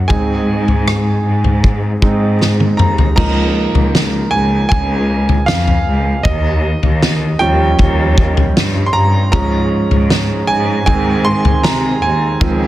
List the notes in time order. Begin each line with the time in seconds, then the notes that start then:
Already playing: F#5
0.08 G#2 G#3 C4 D#4 G#5, kick, floor tom
0.68 floor tom
0.88 cross-stick
1.25 G#2
1.44 floor tom
1.64 kick
2.02 G#2 G#3 C4 D#4, kick
2.42 snare
2.60 high tom
2.77 D#2 A#5, mid tom
2.98 floor tom
3.16 C#2 F3 A#3 D#4 A#5, kick, floor tom, crash
3.75 C#2, floor tom
3.95 snare
4.31 C#2 G#5
4.69 C#2 G#5, kick, floor tom
5.29 floor tom
5.46 F2 F5, snare
5.67 floor tom
5.87 C#2
6.23 D#2 D#5, kick, floor tom
6.83 D#2, floor tom
7.03 snare
7.39 D#2 F3 G3 C#4 G5
7.79 D#2, kick, floor tom
8.18 kick
8.37 floor tom
8.56 G2, snare
8.86 C6
8.93 G2 A#5
9.32 G#2 F3 G#3 C#4 A#5, kick, floor tom
9.91 G#2, floor tom
10.10 snare
10.47 G#2 G#5
10.86 G#2 D#3 G#3 C4 G#5, kick, floor tom
11.25 C6
11.45 floor tom
11.63 C3 A#5, snare
12.02 D#2 G#5
12.40 C#2 D#3 F3 C4, kick, floor tom